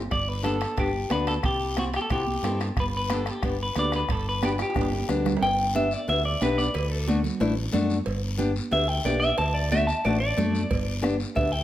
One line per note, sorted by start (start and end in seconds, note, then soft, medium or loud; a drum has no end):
0.00 0.10 G1 medium
0.11 0.65 G1 medium
0.11 0.29 D5 medium
0.11 bombo low medium
0.11 bombo rim medium
0.11 high timbale medium
0.11 long guiro medium
0.29 0.44 B4 medium
0.43 0.56 B3 medium
0.43 0.56 D4 medium
0.43 0.56 G4 medium
0.43 0.79 A4 medium
0.43 bombo rim medium
0.43 high conga medium
0.43 high timbale medium
0.43 short guiro medium
0.61 bombo rim medium
0.61 high timbale medium
0.61 short guiro medium
0.77 1.04 G1 medium
0.77 0.89 B3 medium
0.77 0.89 D4 medium
0.77 0.90 G4 medium
0.77 1.10 G4 medium
0.77 bombo low medium
0.77 bombo rim medium
0.77 high timbale medium
0.77 long guiro medium
1.10 1.38 D2 medium
1.10 1.34 B3 medium
1.10 1.34 D4 medium
1.10 1.34 F#4 medium
1.10 1.28 B4 medium
1.10 bombo rim medium
1.10 high conga medium
1.10 high timbale medium
1.10 low timbale medium
1.10 short guiro medium
1.27 1.33 A4 medium
1.27 bombo rim medium
1.27 high timbale medium
1.27 short guiro medium
1.43 1.97 C2 medium
1.43 1.79 G4 medium
1.43 bombo low medium
1.43 bombo rim medium
1.43 high timbale medium
1.43 long guiro medium
1.77 1.89 C4 medium
1.77 1.89 E4 medium
1.77 1.84 F#4 medium
1.77 1.89 G4 medium
1.77 bombo rim medium
1.77 high conga medium
1.77 high timbale medium
1.77 short guiro medium
1.94 2.01 G4 medium
1.94 bombo rim medium
1.94 high timbale medium
1.94 short guiro medium
2.02 2.08 A4 medium
2.10 2.37 C2 medium
2.10 2.22 C4 medium
2.10 2.23 E4 medium
2.10 2.23 F#4 medium
2.10 2.59 G4 medium
2.10 bombo low medium
2.10 bombo rim medium
2.10 high timbale medium
2.10 long guiro medium
2.27 high conga medium
2.43 2.70 G2 medium
2.43 2.67 C4 medium
2.43 2.67 E4 medium
2.43 2.68 A4 medium
2.43 bombo rim medium
2.43 high conga medium
2.43 high timbale medium
2.43 low timbale medium
2.43 short guiro medium
2.60 bombo rim medium
2.60 high timbale medium
2.60 short guiro medium
2.76 3.30 G1 medium
2.76 2.85 B4 medium
2.76 bombo low medium
2.76 bombo rim medium
2.76 high timbale medium
2.76 long guiro medium
2.97 3.13 B4 medium
3.10 3.22 B3 medium
3.10 3.22 D4 medium
3.10 3.22 G4 medium
3.10 3.30 A4 medium
3.10 bombo rim medium
3.10 high conga medium
3.10 high timbale medium
3.10 short guiro medium
3.26 bombo rim medium
3.26 high timbale medium
3.26 short guiro medium
3.30 3.62 G4 medium
3.43 3.69 G1 medium
3.43 3.55 B3 medium
3.43 3.55 D4 medium
3.43 3.55 G4 medium
3.43 bombo low medium
3.43 bombo rim medium
3.43 high timbale medium
3.43 long guiro medium
3.63 3.78 B4 medium
3.76 4.03 D2 medium
3.76 4.00 B3 medium
3.76 4.00 D4 medium
3.76 4.00 G4 medium
3.76 3.93 D5 medium
3.76 bombo rim medium
3.76 high conga medium
3.76 high timbale medium
3.76 short guiro medium
3.92 4.12 B4 medium
3.92 bombo rim medium
3.92 high timbale medium
3.92 short guiro medium
4.09 4.62 G1 medium
4.09 4.27 A4 medium
4.09 bombo low medium
4.09 bombo rim medium
4.09 high timbale medium
4.09 long guiro medium
4.29 4.43 B4 medium
4.42 4.54 B3 medium
4.42 4.54 D4 medium
4.42 4.55 F#4 medium
4.42 4.50 G4 medium
4.42 bombo rim medium
4.42 high conga medium
4.42 high timbale medium
4.42 short guiro medium
4.58 5.07 G4 medium
4.58 bombo rim medium
4.58 high timbale medium
4.58 short guiro medium
4.70 high timbale medium
4.75 5.02 G1 medium
4.75 4.87 B3 medium
4.75 4.88 D4 soft
4.75 4.88 G4 medium
4.75 bombo low medium
4.75 bombo rim medium
4.75 high conga medium
4.75 long guiro medium
4.81 high timbale medium
4.92 low timbale medium
5.09 5.36 D2 medium
5.09 5.32 B3 medium
5.09 5.32 D4 medium
5.09 5.32 G4 medium
5.09 bombo rim medium
5.09 low conga medium
5.09 short guiro medium
5.15 low timbale medium
5.25 bombo rim medium
5.25 low conga medium
5.25 short guiro medium
5.37 low timbale medium
5.41 5.95 G1 medium
5.41 5.74 G5 loud
5.41 cowbell loud
5.41 long guiro medium
5.75 5.87 B3 medium
5.75 5.87 D4 medium
5.75 5.87 G4 medium
5.75 5.94 E5 medium
5.75 high conga medium
5.75 short guiro medium
5.91 6.09 D5 medium
5.91 short guiro medium
6.08 6.35 D2 medium
6.08 6.20 B3 medium
6.08 6.20 D4 medium
6.08 6.20 G4 medium
6.08 6.25 E5 medium
6.08 cowbell medium
6.08 high conga soft
6.08 long guiro medium
6.25 6.41 D5 medium
6.41 6.68 B1 medium
6.41 6.65 B3 medium
6.41 6.65 D4 medium
6.41 6.65 G4 medium
6.41 6.58 B4 loud
6.41 high conga medium
6.41 low timbale medium
6.41 short guiro medium
6.58 6.74 D5 medium
6.58 short guiro medium
6.74 7.28 D2 medium
6.74 6.91 B4 medium
6.74 cowbell loud
6.74 high conga soft
6.74 long guiro medium
6.91 7.07 A4 medium
7.07 7.19 A3 medium
7.07 7.20 D4 medium
7.07 8.04 F#4 medium
7.07 7.20 F#4 medium
7.07 high conga medium
7.07 short guiro medium
7.24 low conga medium
7.24 short guiro medium
7.40 7.67 A1 loud
7.40 7.52 A3 medium
7.40 7.52 D4 medium
7.40 7.52 E4 medium
7.40 cowbell medium
7.40 high conga soft
7.40 long guiro medium
7.73 8.00 F#2 medium
7.73 7.96 A3 medium
7.73 7.96 D4 medium
7.73 7.97 F#4 medium
7.73 high conga medium
7.73 low conga medium
7.73 low timbale medium
7.73 short guiro medium
7.90 short guiro medium
8.06 8.60 G1 medium
8.06 cowbell loud
8.06 high conga soft
8.06 long guiro medium
8.38 8.50 B3 medium
8.38 8.51 D4 medium
8.38 8.51 G4 medium
8.38 high conga medium
8.38 short guiro medium
8.56 short guiro medium
8.71 8.99 D2 medium
8.71 8.84 B3 medium
8.71 8.84 D4 medium
8.71 8.84 G4 medium
8.71 8.88 E5 medium
8.71 cowbell medium
8.71 high conga soft
8.71 long guiro medium
8.88 9.05 G5 medium
9.05 9.32 B1 medium
9.05 9.28 B3 medium
9.05 9.29 D4 medium
9.05 9.29 G4 medium
9.05 9.22 D5 medium
9.05 high conga medium
9.05 low timbale medium
9.05 short guiro medium
9.20 9.37 E5 medium
9.20 short guiro medium
9.38 9.92 D2 medium
9.38 9.55 A5 medium
9.38 cowbell loud
9.38 high conga soft
9.38 long guiro medium
9.54 9.71 D5 medium
9.72 9.83 A3 medium
9.72 9.84 D4 medium
9.72 9.84 F#4 medium
9.72 9.88 E5 loud
9.72 high conga medium
9.72 short guiro medium
9.87 10.04 A5 medium
9.87 short guiro medium
10.05 10.32 A1 loud
10.05 10.17 A3 medium
10.05 10.17 D4 medium
10.05 10.17 F#4 medium
10.05 10.19 D5 medium
10.05 cowbell medium
10.05 high conga soft
10.05 long guiro medium
10.20 11.17 D5 medium
10.37 10.64 F#2 medium
10.37 10.61 A3 medium
10.37 10.61 D4 medium
10.37 10.61 A4 medium
10.37 high conga medium
10.37 low conga medium
10.37 short guiro medium
10.55 short guiro medium
10.71 11.24 G1 medium
10.71 bombo low medium
10.71 cowbell loud
10.71 high conga soft
10.71 long guiro medium
11.02 11.15 B3 medium
11.02 11.15 D4 medium
11.02 11.15 G4 medium
11.02 bombo rim medium
11.02 high conga medium
11.02 short guiro medium
11.20 short guiro medium
11.35 11.63 D2 medium
11.35 11.48 B3 medium
11.35 11.48 D4 medium
11.35 11.48 G4 medium
11.35 11.52 E5 medium
11.35 bombo low medium
11.35 cowbell medium
11.35 high conga soft
11.35 long guiro medium
11.52 11.63 G5 medium